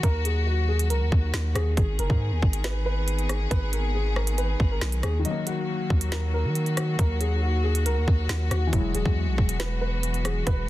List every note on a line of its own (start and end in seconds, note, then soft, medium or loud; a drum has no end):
0.00 0.92 D#2 loud
0.00 8.69 D#3 medium
0.00 1.74 F#3 medium
0.00 1.74 F#4 medium
0.00 0.21 A#4 loud
0.00 kick loud
0.00 closed hi-hat medium
0.25 0.42 G#4 medium
0.25 closed hi-hat medium
0.47 0.64 F#4 medium
0.68 0.86 G#4 medium
0.79 closed hi-hat medium
0.90 1.03 C#2 loud
0.90 1.51 A#4 medium
0.90 closed hi-hat loud
1.01 1.11 D#2 loud
1.12 1.33 D#2 loud
1.12 kick medium
1.34 1.55 D#2 loud
1.34 snare loud
1.34 closed hi-hat medium
1.55 1.76 D#2 loud
1.55 1.73 G#4 medium
1.55 cross-stick loud
1.55 closed hi-hat medium
1.77 1.98 G#1 loud
1.77 5.22 B3 medium
1.77 5.22 G#4 medium
1.77 1.95 G#4 medium
1.77 kick loud
1.77 closed hi-hat medium
1.99 2.09 F#1 loud
1.99 2.60 A#4 medium
1.99 closed hi-hat medium
2.10 2.33 G#2 loud
2.10 kick medium
2.31 2.42 D#2 loud
2.42 3.47 G#1 loud
2.42 kick loud
2.53 closed hi-hat medium
2.64 2.82 B4 medium
2.64 snare loud
2.64 closed hi-hat loud
2.86 3.27 B4 medium
3.08 closed hi-hat medium
3.19 closed hi-hat soft
3.29 3.47 G#4 medium
3.29 cross-stick loud
3.29 closed hi-hat medium
3.51 4.56 G#1 loud
3.51 3.68 B4 loud
3.51 kick loud
3.51 closed hi-hat medium
3.73 3.90 A#4 medium
3.73 closed hi-hat medium
3.95 4.12 G#4 medium
4.16 4.34 A#4 medium
4.16 cross-stick medium
4.27 closed hi-hat loud
4.38 4.69 B4 medium
4.38 closed hi-hat loud
4.60 4.81 G#1 loud
4.60 kick medium
4.71 5.02 A#4 medium
4.81 5.02 B1 loud
4.81 snare loud
4.81 closed hi-hat soft
4.92 closed hi-hat medium
5.03 5.25 D#2 loud
5.03 5.21 G#4 medium
5.03 cross-stick loud
5.03 closed hi-hat medium
5.19 8.66 D#3 medium
5.25 8.69 F#3 medium
5.25 8.69 A#3 medium
5.25 10.69 F#4 medium
5.25 5.43 D#5 medium
5.25 closed hi-hat medium
5.31 8.72 A#3 medium
5.47 6.08 F#4 medium
5.47 closed hi-hat medium
5.90 6.46 D#2 loud
5.90 kick loud
6.01 closed hi-hat loud
6.12 6.29 A#4 medium
6.12 snare loud
6.12 closed hi-hat loud
6.34 6.75 A#4 medium
6.45 6.96 D#3 loud
6.55 closed hi-hat medium
6.66 closed hi-hat soft
6.77 6.95 F#4 medium
6.77 cross-stick loud
6.77 closed hi-hat medium
6.99 7.87 D#2 loud
6.99 7.17 A#4 medium
6.99 kick loud
6.99 closed hi-hat medium
7.21 7.38 G#4 medium
7.21 closed hi-hat medium
7.43 7.60 F#4 medium
7.64 7.81 G#4 medium
7.75 closed hi-hat loud
7.86 7.98 C#2 loud
7.86 8.47 A#4 medium
7.86 closed hi-hat loud
7.97 8.07 D#2 loud
8.08 8.29 D#2 loud
8.08 kick medium
8.29 8.50 D#2 loud
8.29 snare loud
8.29 closed hi-hat medium
8.51 8.72 D#2 loud
8.51 8.69 F#4 medium
8.51 cross-stick medium
8.51 closed hi-hat medium
8.67 10.69 E3 medium
8.73 8.94 E1 loud
8.73 10.69 E3 medium
8.73 10.69 F#3 medium
8.73 10.69 G#3 medium
8.73 10.69 B3 medium
8.73 8.91 E4 medium
8.73 kick loud
8.73 closed hi-hat medium
8.78 10.69 G#3 medium
8.94 9.05 D#1 loud
8.94 9.56 G#4 medium
8.94 closed hi-hat medium
9.06 9.29 E2 loud
9.06 kick loud
9.27 9.38 B1 loud
9.38 10.43 E1 loud
9.38 kick loud
9.49 closed hi-hat medium
9.59 9.77 B4 medium
9.59 snare loud
9.59 closed hi-hat loud
9.81 10.22 B4 medium
10.03 closed hi-hat medium
10.14 closed hi-hat soft
10.25 10.42 G#4 medium
10.25 cross-stick loud
10.25 closed hi-hat medium
10.47 10.69 E1 loud
10.47 10.64 B4 loud
10.47 kick loud
10.47 closed hi-hat medium